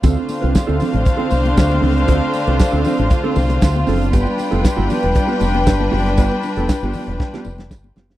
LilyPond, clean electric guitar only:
\new Staff \with { instrumentName = "Clean electric guitar" } { \time 4/4 \key d \dorian \tempo 4 = 117 <c' f' a'>16 r8 <c' f' b'>16 r16 <c' f' a'>16 <c' f' a'>16 r8 <c' f' a'>16 r4 <c' f' a'>16 r16 | <c' f' a'>16 r8 <c' f' b'>16 r16 <c' f' a'>16 <c' f' a'>16 r8 <c' f' a'>16 r4 <c' f' a'>16 r16 | <b f' g'>16 r8 <b f' a'>16 r16 <b f' g'>16 <b f' g'>16 r8 <b f' g'>16 r4 <b f' g'>16 r16 | <b f' g'>16 r8 <b f' a'>16 r16 <b f' g'>16 <b f' g'>16 r8 <b f' g'>16 r4 <b f' g'>16 r16 | }